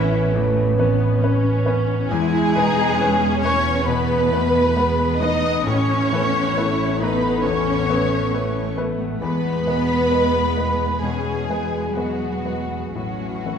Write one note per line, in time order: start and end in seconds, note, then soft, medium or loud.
0.00 2.05 A1 medium
0.00 2.13 A2 medium
0.00 2.14 A2 medium
0.00 0.34 E3 medium
0.00 0.77 E3 medium
0.00 0.28 B3 medium
0.00 0.78 B3 medium
0.00 0.13 C#4 medium
0.00 0.34 C#4 medium
0.00 0.79 C#4 medium
0.00 2.06 C#4 medium
0.00 0.77 E4 medium
0.00 0.54 G#4 medium
0.00 0.79 B4 medium
0.00 1.21 B4 medium
0.00 2.06 B4 medium
0.00 0.74 E5 loud
0.00 0.77 E5 loud
0.14 0.98 C#4 medium
0.35 0.77 E2 medium
0.35 0.77 E3 medium
0.35 0.77 A3 medium
0.56 1.65 B3 medium
0.77 2.14 E3 medium
0.77 1.20 B3 medium
0.77 1.17 B3 medium
0.77 1.18 C#4 medium
0.77 1.18 B4 medium
0.99 1.43 C#4 medium
1.21 1.62 B3 medium
1.21 2.10 C#4 medium
1.21 1.62 C#4 medium
1.21 2.98 B4 medium
1.21 1.62 B4 medium
1.44 1.86 C#4 medium
1.65 2.06 B3 medium
1.65 2.04 B3 medium
1.65 2.06 C#4 medium
1.65 2.06 B4 medium
1.88 2.14 C#4 medium
2.09 5.61 E2 medium
2.09 5.69 E2 medium
2.09 2.54 E2 medium
2.09 3.39 G#3 loud
2.09 5.61 B3 loud
2.09 2.55 E4 medium
2.09 3.38 G#4 loud
2.09 5.61 B4 medium
2.09 3.38 G#5 loud
2.09 3.39 G#5 loud
2.33 2.76 B3 medium
2.55 3.86 B2 medium
2.55 2.95 B3 medium
2.55 3.00 D#4 medium
2.55 2.96 B4 medium
2.77 3.20 B3 medium
2.99 3.40 B3 medium
2.99 3.87 C#4 medium
2.99 4.75 B4 medium
2.99 3.40 B4 medium
3.21 3.65 B3 medium
3.42 3.80 A3 medium
3.42 3.84 B3 medium
3.42 3.87 C#4 medium
3.42 3.84 B4 medium
3.42 3.87 C#5 loud
3.42 3.86 C#6 loud
3.42 3.87 C#6 medium
3.66 4.08 B3 medium
3.87 4.31 B2 medium
3.87 4.30 B2 medium
3.87 5.20 B3 medium
3.87 4.30 B3 medium
3.87 5.20 B4 loud
3.87 5.20 B5 medium
3.87 5.18 B5 medium
4.09 4.53 B3 medium
4.31 5.69 B2 medium
4.31 4.75 A3 medium
4.31 4.72 B3 medium
4.31 4.72 B4 medium
4.54 4.97 B3 medium
4.76 5.21 G#3 medium
4.76 5.17 B3 medium
4.76 6.55 B4 medium
4.76 5.17 B4 medium
4.98 5.41 B3 medium
5.19 5.58 A3 medium
5.19 5.65 B3 medium
5.19 5.62 B3 medium
5.19 5.65 D#4 medium
5.19 5.62 B4 medium
5.19 5.66 D#5 loud
5.19 5.64 D#6 medium
5.19 5.66 D#6 medium
5.42 6.33 B3 medium
5.65 9.17 A1 medium
5.65 9.25 A2 medium
5.65 6.09 A2 medium
5.65 9.04 B3 medium
5.65 6.99 C#4 medium
5.65 6.54 C#4 medium
5.65 9.04 A4 medium
5.65 7.00 C#5 medium
5.65 7.00 C#6 medium
5.65 6.98 C#6 medium
5.88 7.00 A3 medium
6.11 7.43 E3 medium
6.11 6.52 A3 medium
6.11 6.52 B3 medium
6.11 6.53 B4 medium
6.34 6.78 B3 medium
6.56 6.96 A3 medium
6.56 6.97 B3 soft
6.56 7.00 E4 medium
6.56 8.31 B4 medium
6.56 6.97 B4 medium
6.79 7.22 B3 medium
6.99 7.37 A3 soft
6.99 7.41 A3 soft
6.99 7.42 B3 medium
6.99 7.41 B3 soft
6.99 7.44 D#4 medium
6.99 7.44 B5 medium
6.99 7.45 B5 medium
7.03 7.41 B4 soft
7.03 7.44 B4 medium
7.23 8.09 B3 medium
7.43 7.87 E2 medium
7.43 7.87 E3 medium
7.43 8.76 C#4 medium
7.43 7.88 C#4 medium
7.43 8.77 C#5 medium
7.43 8.73 C#6 medium
7.43 8.77 C#6 medium
7.66 8.76 A3 soft
7.89 9.25 E3 soft
7.89 8.28 A3 soft
7.89 8.32 B3 medium
7.89 8.28 B3 soft
7.89 8.29 B4 medium
8.10 8.53 B3 medium
8.32 8.73 A3 soft
8.32 9.22 A3 medium
8.32 8.73 B3 soft
8.32 10.11 B4 medium
8.32 8.73 B4 medium
8.55 8.98 B3 medium
8.76 9.17 A3 soft
8.76 9.15 A3 soft
8.76 9.17 B3 soft
8.76 9.18 B4 soft
8.99 9.87 B3 soft
9.20 12.91 E2 medium
9.20 9.65 E2 medium
9.20 13.00 E2 medium
9.20 9.66 G#3 medium
9.20 10.98 B3 medium
9.20 12.91 B3 medium
9.20 12.91 G#4 medium
9.20 10.99 B4 medium
9.20 10.98 B5 loud
9.20 10.99 B5 medium
9.44 11.25 G#3 soft
9.66 11.01 B2 soft
9.66 10.08 G#3 soft
9.66 10.07 B3 soft
9.66 10.13 B3 medium
9.66 10.08 B4 soft
9.89 10.33 B3 soft
10.11 10.52 G#3 soft
10.11 11.03 G#3 medium
10.11 10.53 B3 soft
10.11 10.53 B4 soft
10.11 11.94 B4 soft
10.34 10.79 B3 soft
10.57 10.98 G#3 soft
10.57 10.95 A3 soft
10.57 10.98 B3 soft
10.57 10.99 B4 soft
10.80 11.70 B3 soft
11.02 11.48 B2 soft
11.02 11.96 G#3 medium
11.02 11.50 C#4 medium
11.02 11.96 G#4 medium
11.02 11.96 G#5 medium
11.26 12.99 G#3 soft
11.49 12.99 B2 soft
11.49 11.93 G#3 soft
11.49 11.93 B3 soft
11.49 12.95 B3 soft
11.49 11.93 B4 soft
11.71 12.18 B3 soft
11.95 12.92 F#3 medium
11.95 12.41 G#3 soft
11.95 12.41 B3 soft
11.95 12.94 F#4 medium
11.95 13.58 B4 soft
11.95 12.41 B4 soft
11.95 12.92 F#5 medium
11.95 12.93 F#5 medium
12.20 12.68 B3 soft
12.44 12.91 G#3 soft
12.44 12.87 A3 soft
12.44 12.91 B3 soft
12.44 12.91 B4 soft
12.69 13.58 B3 soft
12.94 13.58 A1 soft
12.94 13.58 A2 soft
12.94 13.44 A2 soft
12.94 13.58 F#3 medium
12.94 13.58 C#4 soft
12.94 13.58 F#4 medium
12.94 13.58 B4 medium
12.94 13.58 F#5 medium
13.19 13.58 A3 soft
13.44 13.58 E3 soft
13.44 13.58 A3 soft
13.44 13.58 C#4 soft
13.44 13.58 B4 soft